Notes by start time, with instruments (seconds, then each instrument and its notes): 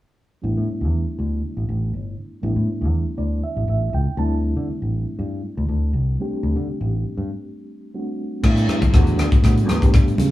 0.42 fingered electric bass A1, reed electric piano G3 A3 B3 D4 E4
0.57 fingered electric bass A2
0.69 muted fingered electric bass stroke
0.81 fingered electric bass E2
1.19 fingered electric bass D2
1.57 fingered electric bass A1
1.69 fingered electric bass A1
1.94 fingered electric bass G1
2.41 fingered electric bass A1, reed electric piano G3 A3 B3 D4 E4
2.56 fingered electric bass A2
2.68 muted fingered electric bass stroke
2.81 fingered electric bass E2
3.18 fingered electric bass D2, reed electric piano D5
3.44 reed electric piano E5
3.56 fingered electric bass A1
3.68 fingered electric bass A1, reed electric piano E5
3.93 fingered electric bass C#2, reed electric piano G5
4.17 fingered electric bass D2, reed electric piano G3 A3 C4 D4 E4 A5
4.57 fingered electric bass D3
4.68 muted fingered electric bass stroke
4.82 fingered electric bass A1
5.19 fingered electric bass G2
5.57 fingered electric bass D2
5.69 fingered electric bass D2
5.93 fingered electric bass C2
6.19 reed electric piano G3 A3 C4 D4 G4
6.43 fingered electric bass D2
6.56 fingered electric bass D3
6.67 muted fingered electric bass stroke
6.81 fingered electric bass A1
7.17 fingered electric bass G2
7.94 reed electric piano G3 A3 C4 D4 F#4
8.43 fingered electric bass A2, reed electric piano G3 A3 B3 D4 E4, kick, cross-stick, crash
8.57 closed hi-hat
8.68 fingered electric bass G2, cross-stick, closed hi-hat
8.82 muted fingered electric bass stroke, kick, closed hi-hat, high conga, low conga
8.93 fingered electric bass E2, reed electric piano G3 A3 B3 D4 F#4, kick, cross-stick, closed hi-hat
9.07 closed hi-hat
9.18 fingered electric bass D3, cross-stick, closed hi-hat, low conga
9.32 muted fingered electric bass stroke, kick, closed hi-hat
9.42 fingered electric bass A2, reed electric piano G3 A3 B3 D4 F#4, kick, cross-stick, closed hi-hat
9.58 closed hi-hat
9.68 fingered electric bass E2, cross-stick, closed hi-hat, high conga
9.81 reed electric piano G3 A3 B3 D4 G4, kick, closed hi-hat
9.93 fingered electric bass G2, kick, cross-stick, closed hi-hat
10.08 closed hi-hat
10.18 fingered electric bass C#3, closed hi-hat, high conga